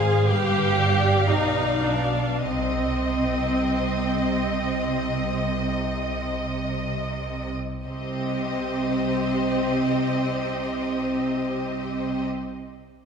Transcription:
Already playing: G#1 G#2 G#4 C5 F5
0.25 G1 G2 G4 B4 F5
0.77 D5
1.30 B1 B2 D#4
1.86 D4
2.45 C2 C3 C4 D#5
7.82 C2 C3 C4 G4 D#5
7.87 C5

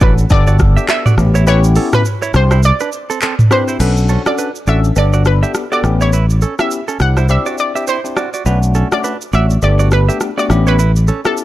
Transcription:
0.01 A1 C#4 D4 F#4 A4 B4 D5, kick, shaker
0.18 shaker
0.30 G1 B3 D4 G4 A4 D5, kick, shaker
0.47 F#4 D5, shaker
0.59 kick, cross-stick, shaker
0.77 G4 E5, shaker
0.89 E5, cross-stick, clap, shaker
1.06 F#4 D5, mid tom, shaker
1.18 A1 B3 C#4 E4 G4, cross-stick, shaker
1.35 E4 C#5, shaker
1.47 B3 C#4 E4 G4 B4 C#5, shaker
1.64 shaker
1.76 C#4 A4, open hi-hat, shaker
1.93 B4, cross-stick, mid tom, shaker
2.05 shaker
2.22 E4 C#5, shaker
2.34 C2 C4 D4 E4 G4 C5, cross-stick, shaker
2.51 E4 C5, cross-stick, shaker
2.63 D5, shaker
2.80 D4 B4, shaker
2.92 shaker
3.10 C4 A4, shaker
3.22 C4 A4, clap, shaker
3.39 mid tom, shaker
3.51 C4 D4 E4 G4 B4 C5, cross-stick, shaker
3.68 E4 C5, shaker
3.80 B1 C#4 D4 F#4 A4 B4, crash, shaker
3.97 shaker
4.09 C#4 A4, shaker
4.26 C#4 D4 F#4 A4 D5, cross-stick, shaker
4.38 D4 B4, shaker
4.55 shaker
4.67 A1 C#4 D4 F#4 A4 D5 E5, shaker
4.84 shaker
4.96 G1 B3 D4 G4 A4 D5, shaker
5.13 F#4 D5, shaker
5.25 B4, cross-stick, shaker
5.42 B3 D4 G4 A4 E5, shaker
5.55 cross-stick, shaker
5.71 B3 D4 F#4 G4 A4 D5, shaker
5.83 A1 B3 C#4 E4 G4, cross-stick, shaker
6.01 E4 C#5, shaker
6.13 E4 B4, shaker
6.30 shaker
6.42 C#4 A4, shaker
6.59 B3 C#4 E4 G4 E5, cross-stick, shaker
6.71 shaker
6.88 C#4 A4, shaker
7.00 C2 C4 D4 E4 G4 F#5, cross-stick, shaker
7.17 E4 C5, cross-stick, shaker
7.29 C4 D4 E4 G4 E5, shaker
7.46 F#4 D5, shaker
7.58 D5, shaker
7.75 C4 D4 E4 G4 E5, shaker
7.87 E4 C5, shaker
8.04 C4 D4 E4 G4, shaker
8.17 F#4 D5, cross-stick, shaker
8.34 F#4 D5, shaker
8.46 B1 A3 C#4 D4 F#4 B4, shaker
8.63 shaker
8.75 C#4 A4, shaker
8.91 A3 C#4 D4 F#4 D5, cross-stick, shaker
9.04 D4 B4, shaker
9.21 shaker
9.33 A1 A3 C#4 D4 F#4 D5 E5, shaker
9.50 shaker
9.62 G1 A3 B3 D4 G4 D5, shaker
9.79 F#4 D5, shaker
9.91 B4, cross-stick, shaker
10.08 A3 B3 D4 G4 E5, shaker
10.21 cross-stick, shaker
10.37 A3 B3 D4 F#4 G4 D5, shaker
10.49 A1 B3 C#4 E4 G4, cross-stick, shaker
10.67 E4 B4 C#5, shaker
10.79 E4 B4, shaker
10.96 shaker
11.08 C#4 A4, shaker
11.25 B3 C#4 E4 G4 A4, cross-stick, shaker
11.37 shaker

